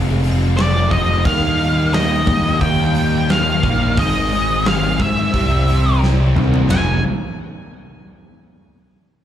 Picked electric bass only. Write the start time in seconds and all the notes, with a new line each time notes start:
Already playing: F1
0.91 F1
1.25 D#2
2.27 D#2
2.61 D#2
3.63 A#1
3.97 G#1
4.99 G#2
5.34 C2
6.36 C2
6.69 F1